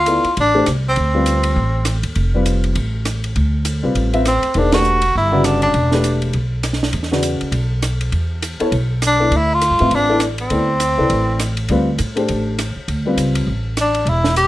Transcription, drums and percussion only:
0.06 hi-hat pedal soft
0.06 ride medium
0.24 ride soft
0.37 ride medium
0.66 cross-stick medium
0.66 hi-hat pedal soft
0.66 ride medium
0.96 ride soft
1.26 hi-hat pedal soft
1.26 ride medium
1.43 ride medium
1.85 cross-stick medium
1.85 hi-hat pedal medium
1.85 ride medium
2.03 ride soft
2.15 ride soft
2.46 hi-hat pedal soft
2.46 ride medium
2.64 ride soft
2.75 ride soft
3.05 cross-stick medium
3.05 hi-hat pedal soft
3.05 ride medium
3.24 ride soft
3.36 ride soft
3.65 hi-hat pedal medium
3.65 ride medium
3.95 ride soft
4.14 ride soft
4.25 cross-stick medium
4.25 hi-hat pedal medium
4.25 ride medium
4.43 ride soft
4.54 ride soft
4.72 snare medium
4.72 ride medium
4.84 hi-hat pedal soft
5.02 ride medium
5.44 cross-stick medium
5.44 hi-hat pedal medium
5.44 ride medium
5.62 ride soft
5.74 ride soft
5.92 snare soft
6.04 hi-hat pedal medium
6.04 ride medium
6.22 ride soft
6.33 ride soft
6.63 cross-stick medium
6.63 hi-hat pedal soft
6.63 ride medium
6.73 snare soft
6.83 snare soft
6.93 ride medium
7.03 snare soft
7.13 snare soft
7.23 hi-hat pedal medium
7.23 ride medium
7.41 ride soft
7.52 ride medium
7.82 cross-stick medium
7.82 hi-hat pedal medium
7.82 ride medium
8.01 ride soft
8.12 ride soft
8.42 hi-hat pedal medium
8.42 ride medium
8.60 ride soft
8.72 ride medium
9.02 cross-stick medium
9.02 hi-hat pedal medium
9.02 ride medium
9.32 ride soft
9.61 hi-hat pedal medium
9.61 ride medium
9.79 ride soft
9.91 ride soft
10.20 cross-stick medium
10.20 hi-hat pedal soft
10.20 ride medium
10.38 ride soft
10.50 ride soft
10.80 hi-hat pedal medium
10.80 ride medium
11.10 ride medium
11.39 cross-stick medium
11.39 hi-hat pedal medium
11.39 ride medium
11.57 ride soft
11.69 ride soft
11.98 hi-hat pedal medium
11.98 ride medium
12.17 ride soft
12.28 ride medium
12.59 cross-stick medium
12.59 hi-hat pedal soft
12.59 ride medium
12.88 ride soft
13.18 hi-hat pedal soft
13.18 ride medium
13.35 ride medium
13.77 cross-stick medium
13.77 hi-hat pedal medium
13.77 ride medium
13.95 ride soft
14.07 ride soft
14.24 snare soft
14.36 hi-hat pedal soft
14.36 ride medium

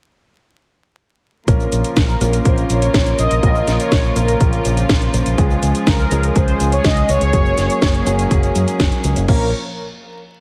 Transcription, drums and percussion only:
1.48 kick loud
1.48 closed hi-hat medium
1.48 cabasa soft
1.60 cabasa soft
1.72 closed hi-hat medium
1.72 cabasa medium
1.84 closed hi-hat medium
1.84 cabasa soft
1.97 kick loud
1.97 snare loud
1.97 closed hi-hat medium
1.97 cabasa soft
2.09 cabasa soft
2.21 closed hi-hat medium
2.21 cabasa medium
2.33 closed hi-hat medium
2.33 cabasa soft
2.45 kick loud
2.45 closed hi-hat medium
2.45 cabasa soft
2.58 closed hi-hat soft
2.58 cabasa soft
2.70 closed hi-hat medium
2.70 cabasa medium
2.82 closed hi-hat medium
2.82 cabasa soft
2.94 kick loud
2.94 snare loud
2.94 closed hi-hat medium
2.94 cabasa soft
3.06 closed hi-hat soft
3.06 cabasa soft
3.19 closed hi-hat medium
3.19 cabasa medium
3.31 closed hi-hat medium
3.31 cabasa soft
3.43 kick loud
3.43 closed hi-hat medium
3.43 cabasa soft
3.55 cabasa soft
3.68 snare soft
3.68 closed hi-hat medium
3.68 cabasa medium
3.80 closed hi-hat medium
3.80 cabasa soft
3.92 kick loud
3.92 snare loud
3.92 closed hi-hat medium
3.92 cabasa soft
4.04 cabasa soft
4.16 closed hi-hat medium
4.16 cabasa medium
4.28 closed hi-hat medium
4.28 cabasa soft
4.41 kick loud
4.41 closed hi-hat medium
4.41 cabasa soft
4.53 closed hi-hat soft
4.53 cabasa soft
4.65 closed hi-hat medium
4.65 cabasa medium
4.77 closed hi-hat medium
4.77 cabasa soft
4.89 kick loud
4.89 snare loud
4.89 closed hi-hat medium
4.89 cabasa soft
5.02 closed hi-hat soft
5.02 cabasa soft
5.14 closed hi-hat medium
5.14 cabasa medium
5.26 closed hi-hat medium
5.26 cabasa soft
5.38 kick loud
5.38 closed hi-hat medium
5.38 cabasa soft
5.51 cabasa soft
5.63 closed hi-hat medium
5.63 cabasa medium
5.75 closed hi-hat soft
5.75 cabasa soft
5.87 kick loud
5.87 snare loud
5.87 closed hi-hat medium
5.87 cabasa soft
5.99 cabasa soft
6.11 closed hi-hat medium
6.11 cabasa medium
6.23 closed hi-hat medium
6.23 cabasa soft
6.36 kick loud
6.36 closed hi-hat medium
6.36 cabasa soft
6.48 closed hi-hat soft
6.48 cabasa soft
6.60 closed hi-hat medium
6.60 cabasa medium
6.72 closed hi-hat soft
6.72 cabasa soft
6.84 kick loud
6.84 snare loud
6.84 closed hi-hat medium
6.84 cabasa soft
6.97 closed hi-hat soft
6.97 cabasa soft
7.09 closed hi-hat medium
7.09 cabasa medium
7.21 closed hi-hat medium
7.21 cabasa soft
7.33 kick loud
7.33 closed hi-hat medium
7.33 cabasa soft
7.45 cabasa soft
7.58 snare soft
7.58 closed hi-hat medium
7.58 cabasa medium
7.70 closed hi-hat soft
7.70 cabasa soft
7.82 kick loud
7.82 snare loud
7.82 closed hi-hat medium
7.82 cabasa soft
7.94 closed hi-hat soft
7.94 cabasa soft
8.07 closed hi-hat medium
8.07 cabasa medium
8.19 closed hi-hat medium
8.19 cabasa soft
8.31 kick loud
8.31 closed hi-hat medium
8.31 cabasa soft
8.43 closed hi-hat soft
8.43 cabasa soft
8.55 closed hi-hat medium
8.55 cabasa medium
8.68 closed hi-hat soft
8.68 cabasa soft
8.80 kick loud
8.80 snare loud
8.80 closed hi-hat medium
8.80 cabasa soft
8.92 closed hi-hat soft
8.92 cabasa soft
9.04 closed hi-hat medium
9.04 cabasa medium
9.16 closed hi-hat soft
9.16 cabasa soft
9.28 kick loud
9.28 crash medium

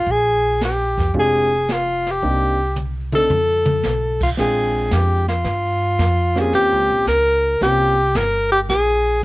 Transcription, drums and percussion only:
0.07 brush sweep soft
0.07 kick soft
0.61 snare medium
0.61 hi-hat pedal medium
0.98 kick medium
0.98 snare soft
1.14 brush sweep soft
1.14 kick soft
1.68 snare medium
1.68 hi-hat pedal medium
2.07 snare soft
2.22 brush sweep soft
2.22 kick soft
2.76 hi-hat pedal medium
2.76 mid tom soft
3.12 mid tom medium
3.30 mid tom medium
3.66 mid tom medium
3.83 snare soft
3.83 hi-hat pedal medium
4.21 kick medium
4.21 crash medium
4.37 brush sweep soft
4.37 kick soft
4.37 snare soft
4.91 kick soft
4.91 snare medium
4.91 hi-hat pedal medium
5.28 snare soft
5.45 brush sweep soft
5.45 kick soft
5.45 snare soft
5.99 kick soft
5.99 snare medium
5.99 hi-hat pedal medium
6.36 snare soft
6.53 brush sweep soft
6.53 kick soft
6.53 snare soft
7.07 kick soft
7.07 snare medium
7.07 hi-hat pedal medium
7.61 brush sweep soft
7.61 kick soft
7.61 snare soft
8.15 kick soft
8.15 snare medium
8.15 hi-hat pedal medium
8.69 brush sweep soft
8.69 kick soft
8.69 snare soft

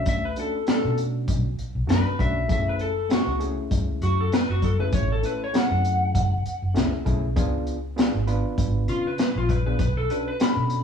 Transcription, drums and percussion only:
0.06 kick loud
0.06 closed hi-hat medium
0.36 closed hi-hat medium
0.67 snare loud
0.67 closed hi-hat medium
0.98 closed hi-hat medium
1.28 kick medium
1.28 closed hi-hat medium
1.59 closed hi-hat medium
1.89 snare loud
1.89 closed hi-hat medium
2.19 kick medium
2.19 closed hi-hat soft
2.49 kick loud
2.49 closed hi-hat medium
2.79 closed hi-hat medium
3.10 snare loud
3.10 closed hi-hat medium
3.41 closed hi-hat medium
3.71 kick medium
3.71 closed hi-hat medium
4.02 closed hi-hat medium
4.32 snare loud
4.32 closed hi-hat medium
4.62 kick medium
4.62 closed hi-hat medium
4.92 kick loud
4.92 closed hi-hat medium
5.23 closed hi-hat medium
5.54 snare loud
5.54 closed hi-hat medium
5.85 closed hi-hat medium
6.15 kick medium
6.15 closed hi-hat medium
6.46 closed hi-hat medium
6.76 snare loud
6.76 closed hi-hat medium
7.06 kick medium
7.06 closed hi-hat medium
7.36 kick loud
7.36 closed hi-hat medium
7.67 closed hi-hat medium
7.98 snare loud
7.98 closed hi-hat medium
8.28 closed hi-hat medium
8.58 kick medium
8.58 closed hi-hat medium
8.88 closed hi-hat medium
9.18 snare medium
9.18 closed hi-hat medium
9.49 kick medium
9.49 closed hi-hat medium
9.79 kick loud
9.79 closed hi-hat medium
10.10 closed hi-hat medium
10.40 snare loud
10.40 closed hi-hat medium
10.70 closed hi-hat medium

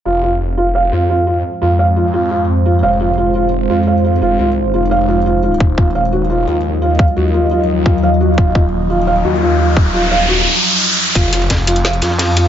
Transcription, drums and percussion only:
5.60 kick loud
5.78 kick loud
6.99 kick loud
7.86 kick loud
8.38 kick loud
8.55 kick loud
9.77 kick loud
11.15 kick loud
11.15 closed hi-hat medium
11.15 ride medium
11.33 closed hi-hat medium
11.33 ride medium
11.42 ride soft
11.50 kick medium
11.50 snare loud
11.50 closed hi-hat loud
11.50 ride medium
11.67 closed hi-hat medium
11.67 ride medium
11.76 closed hi-hat soft
11.85 snare loud
11.85 closed hi-hat medium
11.85 ride medium
11.93 closed hi-hat soft
12.01 snare medium
12.01 closed hi-hat medium
12.01 ride medium
12.10 snare soft
12.18 snare loud
12.18 closed hi-hat loud
12.18 open hi-hat medium
12.36 closed hi-hat medium
12.36 ride medium

